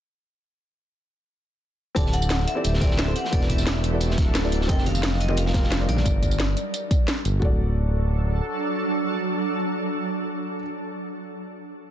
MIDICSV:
0, 0, Header, 1, 6, 480
1, 0, Start_track
1, 0, Tempo, 340909
1, 2767, Time_signature, 4, 2, 24, 8
1, 16766, End_track
2, 0, Start_track
2, 0, Title_t, "Vibraphone"
2, 0, Program_c, 0, 11
2, 2758, Note_on_c, 0, 81, 112
2, 3004, Note_on_c, 0, 78, 103
2, 3009, Note_off_c, 0, 81, 0
2, 3483, Note_on_c, 0, 76, 104
2, 3499, Note_off_c, 0, 78, 0
2, 3931, Note_off_c, 0, 76, 0
2, 3958, Note_on_c, 0, 74, 91
2, 4202, Note_on_c, 0, 76, 95
2, 4209, Note_off_c, 0, 74, 0
2, 4446, Note_on_c, 0, 78, 103
2, 4451, Note_off_c, 0, 76, 0
2, 4684, Note_on_c, 0, 74, 95
2, 4693, Note_off_c, 0, 78, 0
2, 4925, Note_on_c, 0, 76, 101
2, 4932, Note_off_c, 0, 74, 0
2, 6309, Note_off_c, 0, 76, 0
2, 6607, Note_on_c, 0, 79, 99
2, 6830, Note_off_c, 0, 79, 0
2, 6851, Note_on_c, 0, 77, 101
2, 7330, Note_on_c, 0, 75, 92
2, 7343, Note_off_c, 0, 77, 0
2, 7571, Note_on_c, 0, 77, 98
2, 7575, Note_off_c, 0, 75, 0
2, 8292, Note_on_c, 0, 74, 82
2, 8310, Note_off_c, 0, 77, 0
2, 9913, Note_off_c, 0, 74, 0
2, 16766, End_track
3, 0, Start_track
3, 0, Title_t, "Felt piano"
3, 0, Program_c, 1, 0
3, 2740, Note_on_c, 1, 60, 100
3, 2752, Note_on_c, 1, 64, 90
3, 2766, Note_on_c, 1, 67, 94
3, 2776, Note_on_c, 1, 69, 91
3, 2787, Note_on_c, 1, 74, 108
3, 3565, Note_off_c, 1, 60, 0
3, 3571, Note_off_c, 1, 64, 0
3, 3578, Note_off_c, 1, 67, 0
3, 3583, Note_off_c, 1, 69, 0
3, 3588, Note_off_c, 1, 74, 0
3, 3589, Note_on_c, 1, 60, 93
3, 3593, Note_on_c, 1, 64, 86
3, 3601, Note_on_c, 1, 67, 82
3, 3606, Note_on_c, 1, 69, 84
3, 3613, Note_on_c, 1, 74, 100
3, 3929, Note_off_c, 1, 60, 0
3, 3931, Note_off_c, 1, 64, 0
3, 3935, Note_off_c, 1, 67, 0
3, 3937, Note_off_c, 1, 69, 0
3, 3940, Note_off_c, 1, 74, 0
3, 3950, Note_on_c, 1, 60, 93
3, 3957, Note_on_c, 1, 64, 86
3, 3961, Note_on_c, 1, 67, 85
3, 3966, Note_on_c, 1, 69, 86
3, 3975, Note_on_c, 1, 76, 99
3, 4290, Note_off_c, 1, 60, 0
3, 4293, Note_off_c, 1, 64, 0
3, 4295, Note_off_c, 1, 67, 0
3, 4298, Note_off_c, 1, 69, 0
3, 4302, Note_off_c, 1, 76, 0
3, 4313, Note_on_c, 1, 60, 81
3, 4320, Note_on_c, 1, 64, 78
3, 4325, Note_on_c, 1, 67, 76
3, 4333, Note_on_c, 1, 69, 71
3, 4337, Note_on_c, 1, 72, 90
3, 4408, Note_off_c, 1, 60, 0
3, 4411, Note_off_c, 1, 64, 0
3, 4414, Note_off_c, 1, 67, 0
3, 4417, Note_off_c, 1, 69, 0
3, 4420, Note_off_c, 1, 72, 0
3, 4663, Note_on_c, 1, 59, 92
3, 4675, Note_on_c, 1, 64, 85
3, 4685, Note_on_c, 1, 66, 85
3, 4696, Note_on_c, 1, 69, 86
3, 4708, Note_on_c, 1, 74, 104
3, 5480, Note_off_c, 1, 59, 0
3, 5491, Note_off_c, 1, 64, 0
3, 5497, Note_off_c, 1, 66, 0
3, 5501, Note_on_c, 1, 59, 84
3, 5503, Note_off_c, 1, 69, 0
3, 5509, Note_off_c, 1, 74, 0
3, 5512, Note_on_c, 1, 64, 78
3, 5525, Note_on_c, 1, 66, 83
3, 5536, Note_on_c, 1, 69, 82
3, 5548, Note_on_c, 1, 74, 95
3, 6205, Note_off_c, 1, 59, 0
3, 6211, Note_off_c, 1, 64, 0
3, 6217, Note_off_c, 1, 66, 0
3, 6222, Note_off_c, 1, 69, 0
3, 6228, Note_off_c, 1, 74, 0
3, 6233, Note_on_c, 1, 59, 84
3, 6237, Note_on_c, 1, 64, 78
3, 6243, Note_on_c, 1, 66, 77
3, 6250, Note_on_c, 1, 69, 77
3, 6255, Note_on_c, 1, 74, 92
3, 6571, Note_off_c, 1, 59, 0
3, 6573, Note_off_c, 1, 64, 0
3, 6576, Note_off_c, 1, 66, 0
3, 6579, Note_off_c, 1, 69, 0
3, 6579, Note_on_c, 1, 60, 101
3, 6582, Note_off_c, 1, 74, 0
3, 6590, Note_on_c, 1, 65, 97
3, 6602, Note_on_c, 1, 67, 90
3, 6614, Note_on_c, 1, 70, 93
3, 6628, Note_on_c, 1, 75, 114
3, 7404, Note_off_c, 1, 60, 0
3, 7410, Note_off_c, 1, 65, 0
3, 7416, Note_off_c, 1, 67, 0
3, 7422, Note_off_c, 1, 70, 0
3, 7429, Note_off_c, 1, 75, 0
3, 7436, Note_on_c, 1, 60, 94
3, 7441, Note_on_c, 1, 65, 86
3, 7446, Note_on_c, 1, 67, 84
3, 7453, Note_on_c, 1, 70, 87
3, 7459, Note_on_c, 1, 75, 98
3, 7772, Note_off_c, 1, 60, 0
3, 7774, Note_off_c, 1, 65, 0
3, 7777, Note_off_c, 1, 67, 0
3, 7781, Note_off_c, 1, 70, 0
3, 7784, Note_off_c, 1, 75, 0
3, 7794, Note_on_c, 1, 60, 95
3, 7801, Note_on_c, 1, 65, 87
3, 7805, Note_on_c, 1, 67, 84
3, 7812, Note_on_c, 1, 70, 85
3, 7820, Note_on_c, 1, 77, 105
3, 8132, Note_off_c, 1, 60, 0
3, 8135, Note_off_c, 1, 65, 0
3, 8137, Note_off_c, 1, 67, 0
3, 8141, Note_off_c, 1, 70, 0
3, 8145, Note_off_c, 1, 77, 0
3, 8153, Note_on_c, 1, 60, 86
3, 8160, Note_on_c, 1, 65, 77
3, 8167, Note_on_c, 1, 67, 75
3, 8171, Note_on_c, 1, 70, 76
3, 8177, Note_on_c, 1, 74, 89
3, 8248, Note_off_c, 1, 60, 0
3, 8251, Note_off_c, 1, 65, 0
3, 8255, Note_off_c, 1, 67, 0
3, 8257, Note_off_c, 1, 70, 0
3, 8259, Note_off_c, 1, 74, 0
3, 10412, Note_on_c, 1, 66, 91
3, 10447, Note_on_c, 1, 69, 78
3, 10481, Note_on_c, 1, 74, 101
3, 14849, Note_off_c, 1, 66, 0
3, 14884, Note_off_c, 1, 69, 0
3, 14918, Note_off_c, 1, 74, 0
3, 16766, End_track
4, 0, Start_track
4, 0, Title_t, "Ambient pad"
4, 0, Program_c, 2, 92
4, 2759, Note_on_c, 2, 60, 73
4, 2760, Note_on_c, 2, 52, 78
4, 2760, Note_on_c, 2, 67, 88
4, 4663, Note_off_c, 2, 60, 0
4, 4664, Note_off_c, 2, 52, 0
4, 4664, Note_off_c, 2, 67, 0
4, 4678, Note_on_c, 2, 62, 70
4, 4678, Note_on_c, 2, 69, 84
4, 4679, Note_on_c, 2, 54, 80
4, 6583, Note_off_c, 2, 62, 0
4, 6583, Note_off_c, 2, 69, 0
4, 6584, Note_off_c, 2, 54, 0
4, 6604, Note_on_c, 2, 55, 79
4, 6606, Note_on_c, 2, 70, 86
4, 6607, Note_on_c, 2, 63, 74
4, 8506, Note_off_c, 2, 55, 0
4, 8507, Note_off_c, 2, 63, 0
4, 8507, Note_off_c, 2, 70, 0
4, 10450, Note_on_c, 2, 54, 84
4, 10452, Note_on_c, 2, 62, 71
4, 10452, Note_on_c, 2, 69, 92
4, 14887, Note_off_c, 2, 54, 0
4, 14889, Note_off_c, 2, 62, 0
4, 14889, Note_off_c, 2, 69, 0
4, 16766, End_track
5, 0, Start_track
5, 0, Title_t, "Analog synth bass"
5, 0, Program_c, 3, 38
5, 2764, Note_on_c, 3, 26, 96
5, 3466, Note_off_c, 3, 26, 0
5, 3724, Note_on_c, 3, 26, 83
5, 4426, Note_off_c, 3, 26, 0
5, 4684, Note_on_c, 3, 28, 99
5, 5027, Note_off_c, 3, 28, 0
5, 5047, Note_on_c, 3, 28, 88
5, 5884, Note_on_c, 3, 26, 105
5, 5905, Note_off_c, 3, 28, 0
5, 6586, Note_off_c, 3, 26, 0
5, 6604, Note_on_c, 3, 29, 107
5, 8266, Note_off_c, 3, 29, 0
5, 8287, Note_on_c, 3, 34, 96
5, 8503, Note_off_c, 3, 34, 0
5, 8527, Note_on_c, 3, 31, 105
5, 9227, Note_off_c, 3, 31, 0
5, 10208, Note_on_c, 3, 31, 97
5, 10423, Note_off_c, 3, 31, 0
5, 10448, Note_on_c, 3, 26, 102
5, 11830, Note_off_c, 3, 26, 0
5, 16766, End_track
6, 0, Start_track
6, 0, Title_t, "Drums"
6, 2761, Note_on_c, 9, 42, 97
6, 2764, Note_on_c, 9, 36, 114
6, 2765, Note_off_c, 9, 42, 0
6, 2765, Note_on_c, 9, 42, 101
6, 2765, Note_on_c, 9, 54, 51
6, 2898, Note_on_c, 9, 38, 45
6, 2905, Note_off_c, 9, 36, 0
6, 2906, Note_off_c, 9, 42, 0
6, 2906, Note_off_c, 9, 54, 0
6, 2993, Note_on_c, 9, 42, 72
6, 3006, Note_off_c, 9, 42, 0
6, 3006, Note_on_c, 9, 42, 70
6, 3006, Note_on_c, 9, 54, 28
6, 3038, Note_off_c, 9, 38, 0
6, 3125, Note_off_c, 9, 54, 0
6, 3125, Note_on_c, 9, 54, 65
6, 3146, Note_off_c, 9, 42, 0
6, 3234, Note_on_c, 9, 42, 91
6, 3244, Note_off_c, 9, 42, 0
6, 3244, Note_off_c, 9, 54, 0
6, 3244, Note_on_c, 9, 38, 123
6, 3244, Note_on_c, 9, 42, 96
6, 3244, Note_on_c, 9, 54, 51
6, 3249, Note_off_c, 9, 38, 0
6, 3249, Note_on_c, 9, 38, 100
6, 3367, Note_off_c, 9, 38, 0
6, 3367, Note_on_c, 9, 38, 40
6, 3384, Note_off_c, 9, 42, 0
6, 3384, Note_off_c, 9, 54, 0
6, 3485, Note_on_c, 9, 42, 65
6, 3486, Note_off_c, 9, 42, 0
6, 3486, Note_on_c, 9, 42, 70
6, 3486, Note_on_c, 9, 54, 29
6, 3508, Note_off_c, 9, 38, 0
6, 3626, Note_off_c, 9, 42, 0
6, 3626, Note_off_c, 9, 54, 0
6, 3720, Note_on_c, 9, 42, 84
6, 3726, Note_off_c, 9, 42, 0
6, 3726, Note_on_c, 9, 42, 94
6, 3726, Note_on_c, 9, 54, 51
6, 3848, Note_on_c, 9, 38, 48
6, 3866, Note_off_c, 9, 42, 0
6, 3866, Note_off_c, 9, 54, 0
6, 3963, Note_on_c, 9, 42, 63
6, 3964, Note_on_c, 9, 36, 113
6, 3965, Note_off_c, 9, 42, 0
6, 3965, Note_on_c, 9, 42, 68
6, 3965, Note_on_c, 9, 54, 28
6, 3966, Note_off_c, 9, 38, 0
6, 3966, Note_on_c, 9, 38, 45
6, 4089, Note_off_c, 9, 38, 0
6, 4089, Note_on_c, 9, 38, 47
6, 4105, Note_off_c, 9, 36, 0
6, 4106, Note_off_c, 9, 42, 0
6, 4106, Note_off_c, 9, 54, 0
6, 4201, Note_on_c, 9, 42, 84
6, 4205, Note_off_c, 9, 38, 0
6, 4205, Note_off_c, 9, 42, 0
6, 4205, Note_on_c, 9, 38, 116
6, 4205, Note_on_c, 9, 42, 99
6, 4205, Note_on_c, 9, 54, 54
6, 4206, Note_off_c, 9, 38, 0
6, 4206, Note_on_c, 9, 38, 109
6, 4346, Note_off_c, 9, 42, 0
6, 4346, Note_off_c, 9, 54, 0
6, 4347, Note_off_c, 9, 38, 0
6, 4445, Note_on_c, 9, 42, 66
6, 4445, Note_on_c, 9, 54, 27
6, 4447, Note_off_c, 9, 42, 0
6, 4447, Note_on_c, 9, 42, 66
6, 4570, Note_on_c, 9, 38, 44
6, 4586, Note_off_c, 9, 54, 0
6, 4588, Note_off_c, 9, 42, 0
6, 4683, Note_on_c, 9, 42, 92
6, 4684, Note_off_c, 9, 42, 0
6, 4684, Note_on_c, 9, 42, 95
6, 4684, Note_on_c, 9, 54, 49
6, 4685, Note_on_c, 9, 36, 117
6, 4711, Note_off_c, 9, 38, 0
6, 4798, Note_on_c, 9, 38, 52
6, 4825, Note_off_c, 9, 36, 0
6, 4825, Note_off_c, 9, 42, 0
6, 4825, Note_off_c, 9, 54, 0
6, 4924, Note_on_c, 9, 36, 62
6, 4924, Note_on_c, 9, 42, 69
6, 4924, Note_on_c, 9, 54, 29
6, 4929, Note_off_c, 9, 42, 0
6, 4929, Note_on_c, 9, 42, 65
6, 4939, Note_off_c, 9, 38, 0
6, 5044, Note_off_c, 9, 54, 0
6, 5044, Note_on_c, 9, 54, 64
6, 5050, Note_on_c, 9, 38, 42
6, 5065, Note_off_c, 9, 36, 0
6, 5070, Note_off_c, 9, 42, 0
6, 5164, Note_off_c, 9, 38, 0
6, 5164, Note_off_c, 9, 54, 0
6, 5164, Note_on_c, 9, 38, 127
6, 5164, Note_on_c, 9, 42, 98
6, 5164, Note_on_c, 9, 54, 49
6, 5166, Note_off_c, 9, 38, 0
6, 5166, Note_on_c, 9, 38, 119
6, 5168, Note_off_c, 9, 42, 0
6, 5168, Note_on_c, 9, 42, 95
6, 5304, Note_off_c, 9, 54, 0
6, 5307, Note_off_c, 9, 38, 0
6, 5309, Note_off_c, 9, 42, 0
6, 5402, Note_on_c, 9, 42, 75
6, 5405, Note_off_c, 9, 42, 0
6, 5405, Note_on_c, 9, 42, 74
6, 5405, Note_on_c, 9, 54, 29
6, 5546, Note_off_c, 9, 42, 0
6, 5546, Note_off_c, 9, 54, 0
6, 5640, Note_on_c, 9, 42, 86
6, 5646, Note_off_c, 9, 42, 0
6, 5646, Note_on_c, 9, 42, 95
6, 5646, Note_on_c, 9, 54, 49
6, 5774, Note_on_c, 9, 38, 58
6, 5787, Note_off_c, 9, 42, 0
6, 5787, Note_off_c, 9, 54, 0
6, 5884, Note_on_c, 9, 36, 117
6, 5884, Note_on_c, 9, 42, 67
6, 5884, Note_on_c, 9, 54, 28
6, 5892, Note_off_c, 9, 42, 0
6, 5892, Note_on_c, 9, 42, 72
6, 5901, Note_off_c, 9, 38, 0
6, 5901, Note_on_c, 9, 38, 42
6, 6025, Note_off_c, 9, 36, 0
6, 6025, Note_off_c, 9, 54, 0
6, 6033, Note_off_c, 9, 42, 0
6, 6041, Note_off_c, 9, 38, 0
6, 6124, Note_on_c, 9, 38, 125
6, 6124, Note_on_c, 9, 42, 97
6, 6124, Note_on_c, 9, 54, 53
6, 6128, Note_off_c, 9, 42, 0
6, 6128, Note_on_c, 9, 42, 85
6, 6130, Note_off_c, 9, 38, 0
6, 6130, Note_on_c, 9, 38, 113
6, 6246, Note_off_c, 9, 38, 0
6, 6246, Note_on_c, 9, 38, 38
6, 6265, Note_off_c, 9, 54, 0
6, 6269, Note_off_c, 9, 42, 0
6, 6366, Note_on_c, 9, 42, 66
6, 6366, Note_on_c, 9, 54, 27
6, 6371, Note_off_c, 9, 42, 0
6, 6371, Note_on_c, 9, 42, 68
6, 6387, Note_off_c, 9, 38, 0
6, 6490, Note_on_c, 9, 38, 49
6, 6507, Note_off_c, 9, 54, 0
6, 6512, Note_off_c, 9, 42, 0
6, 6600, Note_on_c, 9, 42, 82
6, 6604, Note_on_c, 9, 36, 127
6, 6606, Note_off_c, 9, 42, 0
6, 6606, Note_on_c, 9, 42, 90
6, 6606, Note_on_c, 9, 54, 49
6, 6607, Note_on_c, 9, 62, 77
6, 6631, Note_off_c, 9, 38, 0
6, 6728, Note_on_c, 9, 38, 47
6, 6745, Note_off_c, 9, 36, 0
6, 6747, Note_off_c, 9, 42, 0
6, 6747, Note_off_c, 9, 54, 0
6, 6748, Note_off_c, 9, 62, 0
6, 6842, Note_on_c, 9, 63, 96
6, 6846, Note_on_c, 9, 42, 71
6, 6846, Note_on_c, 9, 54, 29
6, 6848, Note_off_c, 9, 42, 0
6, 6848, Note_on_c, 9, 42, 64
6, 6869, Note_off_c, 9, 38, 0
6, 6963, Note_on_c, 9, 62, 51
6, 6967, Note_off_c, 9, 54, 0
6, 6967, Note_on_c, 9, 54, 59
6, 6983, Note_off_c, 9, 63, 0
6, 6989, Note_off_c, 9, 42, 0
6, 7084, Note_on_c, 9, 42, 91
6, 7086, Note_off_c, 9, 42, 0
6, 7086, Note_off_c, 9, 54, 0
6, 7086, Note_on_c, 9, 38, 126
6, 7086, Note_on_c, 9, 42, 91
6, 7086, Note_on_c, 9, 54, 48
6, 7087, Note_off_c, 9, 38, 0
6, 7087, Note_on_c, 9, 38, 115
6, 7104, Note_off_c, 9, 62, 0
6, 7219, Note_off_c, 9, 38, 0
6, 7219, Note_on_c, 9, 38, 46
6, 7227, Note_off_c, 9, 42, 0
6, 7227, Note_off_c, 9, 54, 0
6, 7327, Note_on_c, 9, 42, 71
6, 7329, Note_off_c, 9, 42, 0
6, 7329, Note_on_c, 9, 42, 70
6, 7329, Note_on_c, 9, 54, 29
6, 7360, Note_off_c, 9, 38, 0
6, 7441, Note_on_c, 9, 62, 88
6, 7453, Note_on_c, 9, 63, 62
6, 7470, Note_off_c, 9, 42, 0
6, 7470, Note_off_c, 9, 54, 0
6, 7558, Note_on_c, 9, 42, 82
6, 7567, Note_off_c, 9, 42, 0
6, 7567, Note_on_c, 9, 42, 96
6, 7567, Note_on_c, 9, 54, 47
6, 7582, Note_off_c, 9, 62, 0
6, 7593, Note_off_c, 9, 63, 0
6, 7689, Note_on_c, 9, 38, 54
6, 7708, Note_off_c, 9, 42, 0
6, 7708, Note_off_c, 9, 54, 0
6, 7799, Note_on_c, 9, 62, 55
6, 7803, Note_on_c, 9, 63, 102
6, 7805, Note_off_c, 9, 38, 0
6, 7805, Note_on_c, 9, 36, 118
6, 7805, Note_on_c, 9, 38, 51
6, 7805, Note_on_c, 9, 42, 64
6, 7807, Note_off_c, 9, 42, 0
6, 7807, Note_on_c, 9, 42, 68
6, 7807, Note_on_c, 9, 54, 26
6, 7934, Note_off_c, 9, 38, 0
6, 7934, Note_on_c, 9, 38, 52
6, 7940, Note_off_c, 9, 62, 0
6, 7944, Note_off_c, 9, 63, 0
6, 7945, Note_off_c, 9, 36, 0
6, 7948, Note_off_c, 9, 42, 0
6, 7948, Note_off_c, 9, 54, 0
6, 8042, Note_off_c, 9, 38, 0
6, 8042, Note_on_c, 9, 38, 123
6, 8050, Note_off_c, 9, 38, 0
6, 8050, Note_on_c, 9, 38, 127
6, 8050, Note_on_c, 9, 42, 87
6, 8050, Note_on_c, 9, 54, 50
6, 8190, Note_off_c, 9, 38, 0
6, 8190, Note_off_c, 9, 54, 0
6, 8191, Note_off_c, 9, 42, 0
6, 8288, Note_on_c, 9, 62, 83
6, 8290, Note_on_c, 9, 42, 69
6, 8290, Note_on_c, 9, 54, 27
6, 8292, Note_off_c, 9, 42, 0
6, 8292, Note_on_c, 9, 42, 73
6, 8397, Note_on_c, 9, 63, 96
6, 8403, Note_on_c, 9, 38, 44
6, 8428, Note_off_c, 9, 62, 0
6, 8430, Note_off_c, 9, 54, 0
6, 8433, Note_off_c, 9, 42, 0
6, 8526, Note_on_c, 9, 36, 119
6, 8529, Note_on_c, 9, 42, 91
6, 8529, Note_on_c, 9, 54, 49
6, 8538, Note_off_c, 9, 63, 0
6, 8543, Note_off_c, 9, 38, 0
6, 8667, Note_off_c, 9, 36, 0
6, 8670, Note_off_c, 9, 42, 0
6, 8670, Note_off_c, 9, 54, 0
6, 8766, Note_on_c, 9, 36, 66
6, 8767, Note_on_c, 9, 42, 68
6, 8767, Note_on_c, 9, 54, 27
6, 8887, Note_off_c, 9, 54, 0
6, 8887, Note_on_c, 9, 54, 57
6, 8907, Note_off_c, 9, 36, 0
6, 8908, Note_off_c, 9, 42, 0
6, 9007, Note_off_c, 9, 54, 0
6, 9007, Note_on_c, 9, 38, 124
6, 9007, Note_on_c, 9, 42, 89
6, 9007, Note_on_c, 9, 54, 46
6, 9148, Note_off_c, 9, 38, 0
6, 9148, Note_off_c, 9, 42, 0
6, 9148, Note_off_c, 9, 54, 0
6, 9247, Note_on_c, 9, 42, 69
6, 9247, Note_on_c, 9, 54, 27
6, 9388, Note_off_c, 9, 42, 0
6, 9388, Note_off_c, 9, 54, 0
6, 9488, Note_on_c, 9, 42, 90
6, 9488, Note_on_c, 9, 54, 49
6, 9628, Note_off_c, 9, 42, 0
6, 9628, Note_off_c, 9, 54, 0
6, 9727, Note_on_c, 9, 36, 117
6, 9729, Note_on_c, 9, 42, 67
6, 9729, Note_on_c, 9, 54, 25
6, 9868, Note_off_c, 9, 36, 0
6, 9870, Note_off_c, 9, 42, 0
6, 9870, Note_off_c, 9, 54, 0
6, 9969, Note_on_c, 9, 38, 127
6, 9969, Note_on_c, 9, 42, 96
6, 9969, Note_on_c, 9, 54, 48
6, 10110, Note_off_c, 9, 38, 0
6, 10110, Note_off_c, 9, 42, 0
6, 10110, Note_off_c, 9, 54, 0
6, 10210, Note_on_c, 9, 42, 65
6, 10210, Note_on_c, 9, 54, 26
6, 10351, Note_off_c, 9, 42, 0
6, 10351, Note_off_c, 9, 54, 0
6, 10447, Note_on_c, 9, 36, 100
6, 10588, Note_off_c, 9, 36, 0
6, 16766, End_track
0, 0, End_of_file